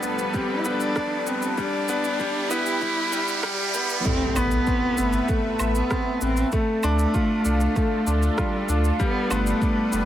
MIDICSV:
0, 0, Header, 1, 8, 480
1, 0, Start_track
1, 0, Key_signature, 0, "minor"
1, 0, Tempo, 618557
1, 1224, Time_signature, 4, 2, 24, 8
1, 7800, End_track
2, 0, Start_track
2, 0, Title_t, "Analog synth pad"
2, 0, Program_c, 0, 89
2, 0, Note_on_c, 0, 53, 69
2, 0, Note_on_c, 0, 55, 78
2, 0, Note_on_c, 0, 62, 75
2, 0, Note_on_c, 0, 69, 74
2, 0, Note_on_c, 0, 71, 86
2, 1191, Note_off_c, 0, 53, 0
2, 1192, Note_off_c, 0, 62, 0
2, 1202, Note_off_c, 0, 69, 0
2, 1203, Note_off_c, 0, 55, 0
2, 1204, Note_off_c, 0, 71, 0
2, 1221, Note_on_c, 0, 67, 89
2, 1224, Note_on_c, 0, 64, 75
2, 3123, Note_off_c, 0, 67, 0
2, 3125, Note_off_c, 0, 64, 0
2, 3136, Note_on_c, 0, 57, 85
2, 3136, Note_on_c, 0, 71, 78
2, 3138, Note_on_c, 0, 69, 79
2, 3138, Note_on_c, 0, 76, 86
2, 5041, Note_off_c, 0, 57, 0
2, 5041, Note_off_c, 0, 71, 0
2, 5042, Note_off_c, 0, 76, 0
2, 5064, Note_on_c, 0, 65, 73
2, 5065, Note_on_c, 0, 62, 81
2, 6983, Note_on_c, 0, 71, 89
2, 6984, Note_on_c, 0, 55, 84
2, 7800, Note_off_c, 0, 55, 0
2, 7800, Note_off_c, 0, 62, 0
2, 7800, Note_off_c, 0, 65, 0
2, 7800, Note_off_c, 0, 69, 0
2, 7800, Note_off_c, 0, 71, 0
2, 7800, End_track
3, 0, Start_track
3, 0, Title_t, "Cello"
3, 0, Program_c, 1, 42
3, 0, Note_on_c, 1, 59, 89
3, 271, Note_on_c, 1, 60, 96
3, 283, Note_off_c, 1, 59, 0
3, 449, Note_on_c, 1, 64, 70
3, 460, Note_off_c, 1, 60, 0
3, 509, Note_on_c, 1, 62, 107
3, 521, Note_off_c, 1, 64, 0
3, 992, Note_on_c, 1, 60, 93
3, 1004, Note_off_c, 1, 62, 0
3, 1225, Note_off_c, 1, 60, 0
3, 1230, Note_on_c, 1, 62, 109
3, 1943, Note_on_c, 1, 64, 103
3, 1955, Note_off_c, 1, 62, 0
3, 2658, Note_off_c, 1, 64, 0
3, 2662, Note_on_c, 1, 55, 107
3, 2903, Note_on_c, 1, 59, 111
3, 2915, Note_off_c, 1, 55, 0
3, 3143, Note_on_c, 1, 60, 124
3, 3155, Note_off_c, 1, 59, 0
3, 3385, Note_on_c, 1, 59, 118
3, 3396, Note_off_c, 1, 60, 0
3, 4102, Note_on_c, 1, 57, 102
3, 4114, Note_off_c, 1, 59, 0
3, 4463, Note_on_c, 1, 59, 104
3, 4474, Note_off_c, 1, 57, 0
3, 4825, Note_on_c, 1, 60, 104
3, 4837, Note_off_c, 1, 59, 0
3, 5062, Note_off_c, 1, 60, 0
3, 5066, Note_on_c, 1, 57, 117
3, 6507, Note_on_c, 1, 55, 105
3, 6519, Note_off_c, 1, 57, 0
3, 6745, Note_on_c, 1, 57, 95
3, 6757, Note_off_c, 1, 55, 0
3, 6986, Note_on_c, 1, 59, 112
3, 6997, Note_off_c, 1, 57, 0
3, 7226, Note_on_c, 1, 57, 115
3, 7238, Note_off_c, 1, 59, 0
3, 7800, Note_off_c, 1, 57, 0
3, 7800, End_track
4, 0, Start_track
4, 0, Title_t, "Grand piano"
4, 0, Program_c, 2, 0
4, 0, Control_c, 2, 64, 127
4, 0, Note_on_c, 2, 55, 80
4, 0, Note_on_c, 2, 59, 92
4, 0, Note_on_c, 2, 62, 67
4, 21, Note_off_c, 2, 59, 0
4, 21, Note_on_c, 2, 59, 70
4, 244, Note_off_c, 2, 59, 0
4, 264, Note_off_c, 2, 55, 0
4, 264, Note_on_c, 2, 55, 91
4, 492, Note_off_c, 2, 55, 0
4, 504, Note_on_c, 2, 59, 89
4, 732, Note_off_c, 2, 59, 0
4, 744, Note_off_c, 2, 62, 0
4, 744, Note_on_c, 2, 62, 70
4, 881, Note_off_c, 2, 62, 0
4, 984, Note_on_c, 2, 59, 68
4, 1205, Note_off_c, 2, 59, 0
4, 1224, Note_on_c, 2, 55, 90
4, 1233, Control_c, 2, 64, 0
4, 1386, Control_c, 2, 64, 127
4, 1452, Note_off_c, 2, 55, 0
4, 1466, Note_on_c, 2, 59, 102
4, 1686, Note_off_c, 2, 59, 0
4, 1708, Note_on_c, 2, 55, 100
4, 1934, Note_off_c, 2, 55, 0
4, 1945, Note_on_c, 2, 59, 101
4, 2166, Note_off_c, 2, 59, 0
4, 2186, Note_on_c, 2, 55, 101
4, 2406, Note_off_c, 2, 55, 0
4, 2423, Note_on_c, 2, 55, 100
4, 2644, Note_off_c, 2, 55, 0
4, 2662, Note_on_c, 2, 55, 109
4, 2884, Note_off_c, 2, 55, 0
4, 2905, Note_on_c, 2, 55, 108
4, 3125, Note_off_c, 2, 55, 0
4, 3144, Note_on_c, 2, 57, 96
4, 3153, Control_c, 2, 64, 0
4, 3288, Control_c, 2, 64, 127
4, 3372, Note_off_c, 2, 57, 0
4, 3383, Note_on_c, 2, 59, 106
4, 3611, Note_off_c, 2, 59, 0
4, 3623, Note_on_c, 2, 60, 79
4, 3760, Note_off_c, 2, 60, 0
4, 3863, Note_on_c, 2, 59, 71
4, 4091, Note_off_c, 2, 59, 0
4, 4101, Note_on_c, 2, 57, 82
4, 4330, Note_off_c, 2, 57, 0
4, 4343, Note_on_c, 2, 59, 66
4, 4571, Note_off_c, 2, 59, 0
4, 4584, Note_on_c, 2, 60, 76
4, 4812, Note_off_c, 2, 60, 0
4, 4824, Note_on_c, 2, 59, 73
4, 4961, Note_off_c, 2, 59, 0
4, 5064, Note_on_c, 2, 57, 100
4, 5074, Control_c, 2, 64, 0
4, 5203, Control_c, 2, 64, 127
4, 5292, Note_off_c, 2, 57, 0
4, 5306, Note_on_c, 2, 62, 106
4, 5533, Note_off_c, 2, 62, 0
4, 5542, Note_on_c, 2, 65, 76
4, 5680, Note_off_c, 2, 65, 0
4, 5780, Note_on_c, 2, 62, 76
4, 6010, Note_off_c, 2, 62, 0
4, 6023, Note_on_c, 2, 57, 82
4, 6251, Note_off_c, 2, 57, 0
4, 6262, Note_on_c, 2, 62, 73
4, 6491, Note_off_c, 2, 62, 0
4, 6500, Note_on_c, 2, 65, 75
4, 6730, Note_off_c, 2, 65, 0
4, 6742, Note_on_c, 2, 62, 77
4, 6880, Note_off_c, 2, 62, 0
4, 6980, Note_on_c, 2, 55, 103
4, 6995, Control_c, 2, 64, 0
4, 7130, Control_c, 2, 64, 127
4, 7210, Note_off_c, 2, 55, 0
4, 7220, Note_on_c, 2, 59, 107
4, 7450, Note_off_c, 2, 59, 0
4, 7464, Note_on_c, 2, 62, 77
4, 7601, Note_off_c, 2, 62, 0
4, 7701, Note_on_c, 2, 59, 78
4, 7800, Note_off_c, 2, 59, 0
4, 7800, End_track
5, 0, Start_track
5, 0, Title_t, "Sub bass"
5, 0, Program_c, 3, 38
5, 26, Note_on_c, 3, 29, 84
5, 197, Note_off_c, 3, 29, 0
5, 506, Note_on_c, 3, 31, 92
5, 677, Note_off_c, 3, 31, 0
5, 985, Note_on_c, 3, 31, 87
5, 1156, Note_off_c, 3, 31, 0
5, 1461, Note_on_c, 3, 36, 100
5, 1634, Note_off_c, 3, 36, 0
5, 1942, Note_on_c, 3, 31, 87
5, 2115, Note_off_c, 3, 31, 0
5, 2423, Note_on_c, 3, 36, 91
5, 2596, Note_off_c, 3, 36, 0
5, 2906, Note_on_c, 3, 31, 85
5, 3077, Note_off_c, 3, 31, 0
5, 3384, Note_on_c, 3, 33, 104
5, 3556, Note_off_c, 3, 33, 0
5, 3866, Note_on_c, 3, 31, 88
5, 4037, Note_off_c, 3, 31, 0
5, 4345, Note_on_c, 3, 33, 93
5, 4516, Note_off_c, 3, 33, 0
5, 4824, Note_on_c, 3, 33, 87
5, 4996, Note_off_c, 3, 33, 0
5, 5306, Note_on_c, 3, 38, 102
5, 5477, Note_off_c, 3, 38, 0
5, 5783, Note_on_c, 3, 36, 83
5, 5955, Note_off_c, 3, 36, 0
5, 6261, Note_on_c, 3, 38, 92
5, 6435, Note_off_c, 3, 38, 0
5, 6742, Note_on_c, 3, 38, 89
5, 6915, Note_off_c, 3, 38, 0
5, 7224, Note_on_c, 3, 31, 101
5, 7396, Note_off_c, 3, 31, 0
5, 7704, Note_on_c, 3, 29, 85
5, 7800, Note_off_c, 3, 29, 0
5, 7800, End_track
6, 0, Start_track
6, 0, Title_t, "Impact"
6, 0, Program_c, 4, 103
6, 3144, Note_on_c, 4, 60, 76
6, 5064, Note_off_c, 4, 60, 0
6, 7800, End_track
7, 0, Start_track
7, 0, Title_t, "Riser"
7, 0, Program_c, 5, 103
7, 0, Note_on_c, 5, 60, 72
7, 3144, Note_off_c, 5, 60, 0
7, 7800, End_track
8, 0, Start_track
8, 0, Title_t, "Drums"
8, 22, Note_on_c, 9, 82, 73
8, 99, Note_off_c, 9, 82, 0
8, 144, Note_on_c, 9, 82, 42
8, 222, Note_off_c, 9, 82, 0
8, 263, Note_on_c, 9, 82, 32
8, 266, Note_on_c, 9, 36, 100
8, 340, Note_off_c, 9, 82, 0
8, 343, Note_off_c, 9, 36, 0
8, 502, Note_on_c, 9, 82, 72
8, 580, Note_off_c, 9, 82, 0
8, 623, Note_on_c, 9, 82, 43
8, 701, Note_off_c, 9, 82, 0
8, 744, Note_on_c, 9, 37, 76
8, 744, Note_on_c, 9, 82, 33
8, 745, Note_on_c, 9, 36, 101
8, 822, Note_off_c, 9, 37, 0
8, 822, Note_off_c, 9, 82, 0
8, 823, Note_off_c, 9, 36, 0
8, 983, Note_on_c, 9, 82, 83
8, 1061, Note_off_c, 9, 82, 0
8, 1104, Note_on_c, 9, 82, 45
8, 1181, Note_off_c, 9, 82, 0
8, 1223, Note_on_c, 9, 82, 33
8, 1225, Note_on_c, 9, 36, 98
8, 1301, Note_off_c, 9, 82, 0
8, 1303, Note_off_c, 9, 36, 0
8, 1463, Note_on_c, 9, 82, 72
8, 1540, Note_off_c, 9, 82, 0
8, 1584, Note_on_c, 9, 82, 45
8, 1662, Note_off_c, 9, 82, 0
8, 1704, Note_on_c, 9, 36, 102
8, 1704, Note_on_c, 9, 82, 34
8, 1781, Note_off_c, 9, 82, 0
8, 1782, Note_off_c, 9, 36, 0
8, 1945, Note_on_c, 9, 82, 77
8, 2023, Note_off_c, 9, 82, 0
8, 2065, Note_on_c, 9, 82, 46
8, 2142, Note_off_c, 9, 82, 0
8, 2184, Note_on_c, 9, 36, 106
8, 2184, Note_on_c, 9, 82, 32
8, 2261, Note_off_c, 9, 82, 0
8, 2262, Note_off_c, 9, 36, 0
8, 2426, Note_on_c, 9, 82, 79
8, 2503, Note_off_c, 9, 82, 0
8, 2545, Note_on_c, 9, 82, 41
8, 2622, Note_off_c, 9, 82, 0
8, 2664, Note_on_c, 9, 37, 79
8, 2664, Note_on_c, 9, 82, 33
8, 2666, Note_on_c, 9, 36, 105
8, 2742, Note_off_c, 9, 37, 0
8, 2742, Note_off_c, 9, 82, 0
8, 2743, Note_off_c, 9, 36, 0
8, 2902, Note_on_c, 9, 82, 83
8, 2980, Note_off_c, 9, 82, 0
8, 3022, Note_on_c, 9, 82, 47
8, 3100, Note_off_c, 9, 82, 0
8, 3142, Note_on_c, 9, 82, 28
8, 3146, Note_on_c, 9, 36, 104
8, 3219, Note_off_c, 9, 82, 0
8, 3224, Note_off_c, 9, 36, 0
8, 3384, Note_on_c, 9, 77, 69
8, 3384, Note_on_c, 9, 82, 74
8, 3461, Note_off_c, 9, 77, 0
8, 3461, Note_off_c, 9, 82, 0
8, 3501, Note_on_c, 9, 82, 41
8, 3579, Note_off_c, 9, 82, 0
8, 3622, Note_on_c, 9, 82, 30
8, 3626, Note_on_c, 9, 36, 99
8, 3700, Note_off_c, 9, 82, 0
8, 3704, Note_off_c, 9, 36, 0
8, 3861, Note_on_c, 9, 82, 71
8, 3939, Note_off_c, 9, 82, 0
8, 3979, Note_on_c, 9, 82, 44
8, 4057, Note_off_c, 9, 82, 0
8, 4102, Note_on_c, 9, 82, 33
8, 4106, Note_on_c, 9, 36, 101
8, 4180, Note_off_c, 9, 82, 0
8, 4184, Note_off_c, 9, 36, 0
8, 4341, Note_on_c, 9, 77, 69
8, 4341, Note_on_c, 9, 82, 72
8, 4419, Note_off_c, 9, 77, 0
8, 4419, Note_off_c, 9, 82, 0
8, 4463, Note_on_c, 9, 82, 42
8, 4540, Note_off_c, 9, 82, 0
8, 4584, Note_on_c, 9, 37, 82
8, 4584, Note_on_c, 9, 82, 31
8, 4586, Note_on_c, 9, 36, 101
8, 4661, Note_off_c, 9, 37, 0
8, 4661, Note_off_c, 9, 82, 0
8, 4664, Note_off_c, 9, 36, 0
8, 4821, Note_on_c, 9, 82, 79
8, 4899, Note_off_c, 9, 82, 0
8, 4941, Note_on_c, 9, 82, 42
8, 5019, Note_off_c, 9, 82, 0
8, 5060, Note_on_c, 9, 82, 33
8, 5066, Note_on_c, 9, 36, 102
8, 5138, Note_off_c, 9, 82, 0
8, 5144, Note_off_c, 9, 36, 0
8, 5302, Note_on_c, 9, 77, 64
8, 5302, Note_on_c, 9, 82, 78
8, 5379, Note_off_c, 9, 77, 0
8, 5379, Note_off_c, 9, 82, 0
8, 5422, Note_on_c, 9, 82, 42
8, 5500, Note_off_c, 9, 82, 0
8, 5543, Note_on_c, 9, 82, 33
8, 5545, Note_on_c, 9, 36, 109
8, 5621, Note_off_c, 9, 82, 0
8, 5623, Note_off_c, 9, 36, 0
8, 5781, Note_on_c, 9, 82, 75
8, 5859, Note_off_c, 9, 82, 0
8, 5901, Note_on_c, 9, 82, 45
8, 5979, Note_off_c, 9, 82, 0
8, 6023, Note_on_c, 9, 82, 34
8, 6024, Note_on_c, 9, 36, 115
8, 6101, Note_off_c, 9, 82, 0
8, 6102, Note_off_c, 9, 36, 0
8, 6263, Note_on_c, 9, 82, 81
8, 6340, Note_off_c, 9, 82, 0
8, 6383, Note_on_c, 9, 82, 43
8, 6460, Note_off_c, 9, 82, 0
8, 6502, Note_on_c, 9, 37, 79
8, 6502, Note_on_c, 9, 82, 32
8, 6504, Note_on_c, 9, 36, 107
8, 6580, Note_off_c, 9, 37, 0
8, 6580, Note_off_c, 9, 82, 0
8, 6582, Note_off_c, 9, 36, 0
8, 6743, Note_on_c, 9, 82, 84
8, 6820, Note_off_c, 9, 82, 0
8, 6863, Note_on_c, 9, 82, 43
8, 6940, Note_off_c, 9, 82, 0
8, 6983, Note_on_c, 9, 82, 33
8, 6984, Note_on_c, 9, 36, 109
8, 7061, Note_off_c, 9, 36, 0
8, 7061, Note_off_c, 9, 82, 0
8, 7223, Note_on_c, 9, 77, 66
8, 7223, Note_on_c, 9, 82, 75
8, 7301, Note_off_c, 9, 77, 0
8, 7301, Note_off_c, 9, 82, 0
8, 7345, Note_on_c, 9, 82, 45
8, 7423, Note_off_c, 9, 82, 0
8, 7463, Note_on_c, 9, 36, 110
8, 7464, Note_on_c, 9, 82, 32
8, 7541, Note_off_c, 9, 36, 0
8, 7542, Note_off_c, 9, 82, 0
8, 7702, Note_on_c, 9, 82, 79
8, 7780, Note_off_c, 9, 82, 0
8, 7800, End_track
0, 0, End_of_file